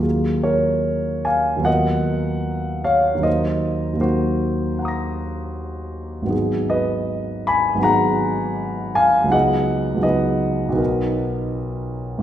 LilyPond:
<<
  \new Staff \with { instrumentName = "Grand piano" } { \time 4/4 \key ees \minor \tempo 4 = 79 << { r1 | r2 <ges'' bes'' ees''' bes'''>2 | r1 | r1 | } \\ { r8 <bes' des''>4 <f'' aes''>8 <dis'' fis''>4. <des'' eis''>8 | <c'' ees''>4 <ges' c''>2. | r8 <ces'' ees''>4 <aes'' ces'''>8 <ges'' bes''>4. <f'' aes''>8 | <ees'' ges''>4 <ces'' ees''>2. | } >> }
  \new Staff \with { instrumentName = "Grand piano" } { \time 4/4 \key ees \minor <ees, ges bes f' aes'>2 <dis, fis b eis' ais'>2 | <ees, ges bes ees' bes'>4 <ees, ges bes ees' bes'>2. | <aes,, ges ces' ees' aes'>2 <aes,, ges ces' ees' aes'>2 | <des, ges ces' ees' aes'>4 <des, ges ces' ees' aes'>4 <b,, fis b dis' ais'>2 | }
>>